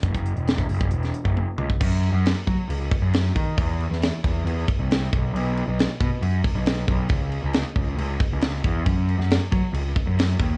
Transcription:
<<
  \new Staff \with { instrumentName = "Picked electric bass" } { \clef bass \time 4/4 \key fis \mixolydian \tempo 4 = 136 fis,,8. e,,8. fis,,8 e,,8 r16 fis,,8 r16 cis,16 r16 | fis,8. fis,8 r16 fis16 r16 cis,8 r16 fis,8. dis8 | e,8. e,8 r16 e,8 e,8 r16 c,8. b,,8 | b,,8. b,,8 r16 b,16 r16 fis,8 r16 b,,8. b,,8 |
cis,8. cis,8 r16 cis,8 cis,8 r16 cis,8. e,8 | fis,8. fis,8 r16 fis16 r16 cis,8 r16 fis,8. dis,8 | }
  \new DrumStaff \with { instrumentName = "Drums" } \drummode { \time 4/4 <hh bd>16 <hh bd>16 hh16 hh16 <hh sn>16 <hh bd>16 hho16 bd16 hh16 <hh sn>16 hh16 bd16 tommh8 toml16 bd16 | <cymc bd>8 cymc8 <cymc sn>8 <cymc bd>8 cymc8 <cymc bd>8 <cymc sn>16 sn16 <cymc bd>8 | <cymc bd>8 cymc16 sn16 <cymc sn>8 <cymc bd>8 cymc8 <cymc bd>8 <cymc sn>16 sn16 <cymc bd>8 | cymc8 cymc8 <cymc sn>8 <cymc bd>8 cymc8 <cymc bd>8 <cymc sn>16 sn16 <cymc bd>8 |
<cymc bd>8 cymc8 <cymc sn>8 <cymc bd>8 cymc8 <cymc bd>8 <cymc sn>16 sn16 <cymc bd>8 | <cymc bd>8 cymc16 sn16 <cymc sn>8 <cymc bd>8 cymc8 <cymc bd>8 <cymc sn>16 sn16 <cymc bd>8 | }
>>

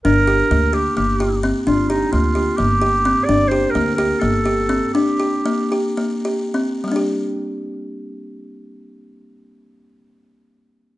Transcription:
<<
  \new Staff \with { instrumentName = "Clarinet" } { \time 7/8 \key g \minor \tempo 4 = 121 bes'4. g'8 g'4 r8 | f'8 ees'8 f'4 g'4. | d''8 c''8 bes'8 bes'8 a'4. | g'2 r4. |
r2. r8 | r2. r8 | }
  \new Staff \with { instrumentName = "Kalimba" } { \time 7/8 \key g \minor d'8 g'8 bes8 g'8 bes8 g'8 c'8 | d'8 g'8 bes8 g'8 bes8 g'8 c'8 | d'8 g'8 bes8 g'8 bes8 g'8 c'8 | d'8 g'8 bes8 g'8 bes8 g'8 c'8 |
<g bes d' g'>2.~ <g bes d' g'>8~ | <g bes d' g'>2.~ <g bes d' g'>8 | }
  \new Staff \with { instrumentName = "Upright bass" } { \clef bass \time 7/8 \key g \minor g,,4 d,4 g,,4. | g,,4 d,4 g,,4. | g,,4 d,4 g,,4. | r2. r8 |
r2. r8 | r2. r8 | }
>>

